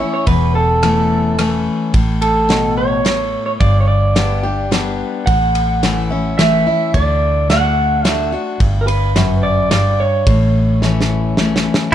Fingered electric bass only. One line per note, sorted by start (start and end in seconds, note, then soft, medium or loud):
0.27 1.68 E1 medium
1.94 3.35 A1 medium
3.60 5.01 G1 medium
5.27 6.68 A1 medium
6.94 8.35 D2 medium
8.60 10.01 G1 medium
10.27 11.67 A1 medium